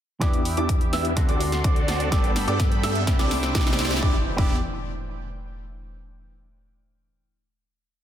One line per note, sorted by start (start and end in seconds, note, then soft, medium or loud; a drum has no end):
0.20 0.55 E2 medium
0.20 1.11 E3 medium
0.20 1.12 B3 medium
0.20 0.41 B3 medium
0.20 0.41 D4 medium
0.20 1.12 D4 medium
0.20 0.41 E4 medium
0.20 1.12 E4 medium
0.20 0.41 G4 medium
0.20 1.16 G4 medium
0.20 1.13 G4 medium
0.20 0.41 D5 loud
0.20 1.16 E5 medium
0.20 1.16 D6 medium
0.20 0.41 D6 medium
0.20 kick loud
0.20 snare soft
0.20 closed hi-hat loud
0.20 riser medium
0.33 closed hi-hat soft
0.45 open hi-hat loud
0.57 0.91 E2 loud
0.57 0.69 B3 medium
0.57 0.69 D4 medium
0.57 0.69 E4 medium
0.57 0.69 G4 medium
0.57 0.69 D5 medium
0.57 0.70 D6 medium
0.57 closed hi-hat soft
0.69 kick loud
0.69 closed hi-hat medium
0.81 closed hi-hat soft
0.93 1.26 E2 medium
0.93 1.12 B3 medium
0.93 1.12 D4 medium
0.93 1.12 E4 medium
0.93 1.12 G4 medium
0.93 1.12 E5 loud
0.93 1.12 E6 medium
0.93 snare medium
0.93 open hi-hat medium
1.05 closed hi-hat soft
1.16 2.07 D3 medium
1.16 2.07 C4 medium
1.16 2.07 D4 medium
1.16 2.11 F#4 medium
1.16 2.08 F#4 medium
1.16 2.08 A4 medium
1.16 2.11 D5 medium
1.16 2.11 C6 medium
1.16 kick loud
1.16 snare medium
1.16 closed hi-hat medium
1.29 1.62 D2 loud
1.29 1.41 C4 medium
1.29 1.41 D4 medium
1.29 1.41 F#4 medium
1.29 1.41 A4 medium
1.29 1.41 D5 medium
1.29 1.41 D6 medium
1.29 closed hi-hat soft
1.41 open hi-hat loud
1.52 snare medium
1.52 closed hi-hat soft
1.64 2.10 D2 medium
1.64 2.09 C4 medium
1.64 2.09 D4 medium
1.64 2.09 F#4 medium
1.64 2.09 A4 medium
1.64 2.09 D5 medium
1.64 2.09 D6 medium
1.64 kick loud
1.64 closed hi-hat loud
1.76 closed hi-hat soft
1.88 snare medium
1.88 open hi-hat medium
2.00 closed hi-hat soft
2.11 2.45 G1 loud
2.11 3.02 G2 medium
2.11 3.02 B3 medium
2.11 2.31 B3 medium
2.11 3.03 D4 medium
2.11 2.31 G4 medium
2.11 3.03 G4 medium
2.11 3.06 A4 medium
2.11 3.03 A4 medium
2.11 3.06 G5 medium
2.11 3.06 B5 medium
2.11 2.31 D6 loud
2.11 kick loud
2.11 snare medium
2.11 closed hi-hat medium
2.24 closed hi-hat soft
2.36 snare medium
2.36 open hi-hat loud
2.48 2.81 G2 loud
2.48 2.60 B3 medium
2.48 2.60 D4 medium
2.48 2.60 G4 medium
2.48 2.60 A4 medium
2.48 2.60 D5 medium
2.48 2.60 D6 medium
2.48 closed hi-hat soft
2.60 kick loud
2.60 snare medium
2.60 closed hi-hat medium
2.72 closed hi-hat soft
2.83 3.17 G2 loud
2.83 3.03 B3 medium
2.83 3.03 D4 medium
2.83 3.03 G4 medium
2.83 3.03 A4 medium
2.83 3.03 E5 medium
2.83 3.03 E6 loud
2.83 snare medium
2.83 open hi-hat loud
2.95 closed hi-hat soft
3.06 3.97 C3 medium
3.06 3.97 C4 medium
3.06 3.98 D4 medium
3.06 3.98 E4 medium
3.06 3.98 G4 medium
3.06 4.02 C5 medium
3.06 4.02 E5 medium
3.06 4.02 D6 medium
3.06 kick loud
3.06 snare medium
3.06 closed hi-hat loud
3.19 3.53 C2 loud
3.19 3.31 C4 medium
3.19 3.31 D4 medium
3.19 3.31 E4 medium
3.19 3.31 G4 medium
3.19 3.31 D5 medium
3.19 3.31 D6 medium
3.19 snare medium
3.19 closed hi-hat soft
3.31 snare loud
3.31 open hi-hat loud
3.43 snare medium
3.43 closed hi-hat soft
3.55 4.00 C2 medium
3.55 4.00 C4 medium
3.55 4.00 D4 medium
3.55 4.00 E4 medium
3.55 4.00 G4 medium
3.55 4.00 D5 medium
3.55 4.00 D6 medium
3.55 kick loud
3.55 snare loud
3.55 closed hi-hat medium
3.61 snare medium
3.67 snare medium
3.67 closed hi-hat soft
3.73 snare medium
3.79 snare loud
3.79 open hi-hat loud
3.85 snare medium
3.91 snare loud
3.91 closed hi-hat soft
3.97 snare loud
4.01 4.16 E2 loud
4.01 4.25 E3 medium
4.01 4.04 B3 medium
4.01 4.16 B3 medium
4.01 4.16 D4 medium
4.01 4.25 D4 medium
4.01 4.16 E4 medium
4.01 4.16 G4 medium
4.01 4.17 G4 medium
4.01 4.16 D5 loud
4.01 4.25 G5 medium
4.01 4.16 D6 medium
4.01 kick loud
4.01 impact medium
4.36 4.60 E2 loud
4.36 4.40 B3 medium
4.36 4.56 B3 medium
4.36 4.56 D4 medium
4.36 4.56 E4 medium
4.36 4.56 G4 medium
4.36 4.57 G4 medium
4.36 4.56 D5 medium
4.36 4.56 D6 loud
4.36 kick loud